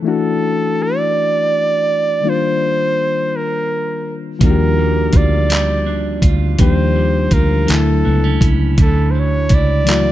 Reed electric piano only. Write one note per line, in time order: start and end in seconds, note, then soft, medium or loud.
0.03 2.18 E3 medium
0.03 2.19 A3 medium
0.03 2.20 E4 medium
0.07 2.20 D4 medium
0.07 2.21 F#4 medium
2.21 4.37 D#3 medium
2.21 4.37 G3 medium
2.21 4.38 A#3 medium
2.25 4.39 D4 medium
2.25 4.39 F4 medium
4.39 6.55 F3 medium
4.39 6.56 G3 medium
4.39 6.56 A#3 medium
4.43 6.57 D4 medium
4.43 4.50 F#4 medium
4.51 6.60 G4 medium
6.59 7.68 F3 medium
6.59 7.69 G3 medium
6.59 7.69 A#3 medium
6.59 7.70 D4 medium
6.59 7.70 G4 medium
7.66 7.75 E3 medium
7.66 9.83 A3 medium
7.72 9.85 F#3 medium
7.72 9.85 E4 medium
9.85 10.12 E3 medium
9.85 10.12 F#3 medium
9.85 10.12 A3 medium
9.89 10.12 E4 medium
9.89 10.12 F#4 medium